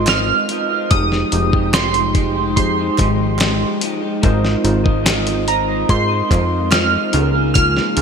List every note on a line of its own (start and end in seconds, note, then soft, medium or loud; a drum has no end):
0.00 0.33 G#1 loud
0.00 0.87 G#3 medium
0.00 0.87 C4 medium
0.00 0.66 D#4 medium
0.00 0.87 F4 loud
0.00 0.93 F4 medium
0.00 0.93 A#4 medium
0.00 0.92 B4 medium
0.00 0.93 C5 medium
0.00 0.67 D#5 medium
0.00 0.11 C6 loud
0.07 0.49 G#3 medium
0.07 0.47 C4 medium
0.07 0.49 F4 medium
0.07 0.50 C5 medium
0.07 0.50 D#5 medium
0.07 0.94 F6 loud
0.07 snare loud
0.07 clap medium
0.07 closed hi-hat medium
0.49 0.70 C4 medium
0.49 0.71 F4 medium
0.49 0.70 C5 medium
0.49 0.68 D#5 medium
0.49 closed hi-hat medium
0.69 0.91 C5 medium
0.69 0.90 D#5 medium
0.73 0.91 F4 medium
0.89 1.24 F1 loud
0.89 1.52 F3 medium
0.89 4.20 F3 medium
0.89 1.53 G#3 medium
0.89 4.20 G#3 medium
0.89 1.26 D#4 medium
0.89 4.20 D#4 medium
0.89 1.53 D#4 medium
0.89 1.26 G4 medium
0.89 1.50 G4 medium
0.89 1.27 G#4 medium
0.89 1.27 C5 medium
0.89 4.20 G5 medium
0.89 1.70 D#6 loud
0.89 kick loud
0.89 closed hi-hat loud
1.12 snare soft
1.32 2.58 F1 medium
1.32 2.38 D#4 medium
1.32 2.39 G4 medium
1.32 2.39 G#4 medium
1.32 2.39 C5 medium
1.32 closed hi-hat medium
1.51 1.74 D#4 medium
1.51 1.73 G4 medium
1.51 kick loud
1.56 1.73 G#3 medium
1.73 2.12 F3 medium
1.73 2.13 G#3 medium
1.73 2.15 D#4 medium
1.73 2.16 G4 loud
1.73 2.55 C6 loud
1.73 snare loud
1.73 clap medium
1.73 closed hi-hat loud
1.94 closed hi-hat medium
2.14 2.35 F3 medium
2.14 2.36 G#3 medium
2.14 2.35 D#4 medium
2.14 2.34 G4 medium
2.14 kick medium
2.14 closed hi-hat medium
2.35 2.79 G#3 soft
2.35 2.78 D#4 soft
2.35 2.76 G4 medium
2.56 2.90 F2 medium
2.56 3.98 D#4 medium
2.56 3.98 G4 medium
2.56 3.99 G#4 medium
2.56 3.99 C5 medium
2.56 3.77 C6 medium
2.56 kick medium
2.56 closed hi-hat loud
2.77 2.99 G#3 soft
2.77 2.99 D#4 medium
2.77 2.98 G4 medium
2.98 3.65 G#1 loud
2.98 3.38 F3 medium
2.98 3.39 G#3 medium
2.98 3.40 D#4 medium
2.98 kick medium
2.98 clap medium
2.98 closed hi-hat medium
3.02 3.41 G4 medium
3.39 3.80 F3 medium
3.39 3.81 G#3 medium
3.39 3.82 D#4 medium
3.39 3.83 G4 medium
3.39 snare loud
3.39 clap medium
3.39 closed hi-hat medium
3.81 4.02 F3 medium
3.81 4.03 G#3 medium
3.81 4.02 D#4 medium
3.81 3.99 G4 medium
3.81 closed hi-hat medium
4.01 4.23 D#4 medium
4.01 4.22 G4 medium
4.05 4.20 G#3 medium
4.22 4.57 G#1 loud
4.22 4.85 G#3 medium
4.22 8.02 G#3 medium
4.22 4.85 C4 medium
4.22 7.11 C4 medium
4.22 4.58 D#4 medium
4.22 8.02 F4 medium
4.22 4.85 F4 loud
4.22 4.59 F4 medium
4.22 4.59 A#4 medium
4.22 4.84 C5 loud
4.22 4.60 C5 medium
4.22 4.83 D#5 loud
4.22 kick loud
4.22 closed hi-hat medium
4.45 snare soft
4.64 5.85 G#1 loud
4.64 5.70 D#4 medium
4.64 5.71 F4 medium
4.64 5.71 A#4 medium
4.64 5.72 C5 medium
4.64 closed hi-hat medium
4.84 5.04 F4 medium
4.84 5.05 C5 medium
4.84 5.05 D#5 medium
4.84 kick loud
5.04 5.47 G#3 medium
5.04 5.45 C4 loud
5.04 5.46 F4 medium
5.04 5.48 C5 loud
5.04 5.48 D#5 loud
5.04 snare loud
5.04 clap medium
5.04 closed hi-hat loud
5.27 closed hi-hat medium
5.46 5.68 C4 medium
5.46 5.68 F4 medium
5.46 5.68 C5 medium
5.46 5.66 D#5 medium
5.46 5.91 A#5 medium
5.46 closed hi-hat medium
5.67 6.10 F4 medium
5.67 6.09 C5 medium
5.67 6.07 D#5 medium
5.89 6.22 G#2 loud
5.89 7.12 D#4 medium
5.89 7.12 F4 medium
5.89 7.15 A#4 medium
5.89 7.15 C5 medium
5.89 6.69 C6 loud
5.89 kick loud
5.89 closed hi-hat medium
6.08 6.29 F4 medium
6.08 6.31 C5 soft
6.08 6.30 D#5 medium
6.29 6.97 F2 loud
6.29 6.70 C4 medium
6.29 6.70 F4 medium
6.29 6.71 C5 medium
6.29 6.72 D#5 medium
6.29 kick medium
6.29 clap medium
6.29 closed hi-hat medium
6.70 7.11 G#3 medium
6.70 7.13 C4 medium
6.70 7.13 F4 medium
6.70 7.14 C5 medium
6.70 7.14 D#5 medium
6.70 7.53 F6 medium
6.70 snare loud
6.70 clap medium
6.70 closed hi-hat medium
7.11 7.80 C#2 loud
7.11 8.02 C#3 medium
7.11 7.33 F3 medium
7.11 7.34 A#3 medium
7.11 8.02 A#3 medium
7.11 7.84 D#4 medium
7.11 7.84 F4 medium
7.11 7.34 F4 medium
7.11 7.85 G#4 medium
7.11 7.32 G#4 medium
7.11 7.21 A4 medium
7.11 closed hi-hat medium
7.22 7.89 A#4 medium
7.33 7.54 A#3 medium
7.33 7.55 F4 medium
7.33 7.55 G#4 medium
7.54 8.02 C#3 medium
7.54 8.02 F3 medium
7.54 8.02 A#3 medium
7.54 8.02 F4 medium
7.54 8.02 G#4 medium
7.54 8.02 F6 loud
7.54 kick loud
7.54 closed hi-hat loud
7.77 snare soft
7.96 8.02 C#2 loud
7.96 8.02 D#4 medium
7.96 8.02 F4 medium
7.96 8.02 G#4 medium
7.96 closed hi-hat medium